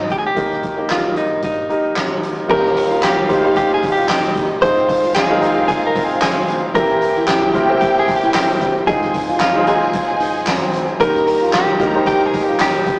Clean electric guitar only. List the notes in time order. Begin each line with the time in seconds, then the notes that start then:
Already playing: D#4
0.12 G4
0.18 G#4
0.26 G4
0.91 F4
1.17 D#4
1.44 D#4
2.51 A#4
3.04 G4
3.57 G4
3.74 G#4
3.92 G4
4.09 G4
4.62 C5
5.15 G#4
5.55 G4
5.68 G#4
5.87 A#4
6.04 G#4
6.22 G#4
6.75 A#4
7.27 G4
7.81 G4
7.99 G#4
8.16 G4
8.35 G4
8.87 G#4
9.41 F4
9.68 G#4
11.01 A#4
11.54 G4
12.07 G4
12.25 G#4
12.43 G4
12.61 G4